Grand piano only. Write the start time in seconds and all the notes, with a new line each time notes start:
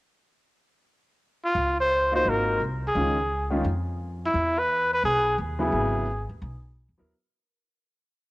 2.12 A#3 D#4 F4 F#4
2.95 D#3 G#3 C#4 F4
3.50 D#3 G#3 C#4 F4
5.59 C#3 F#3 B3 E4
6.98 F#3 B3 E4 A#4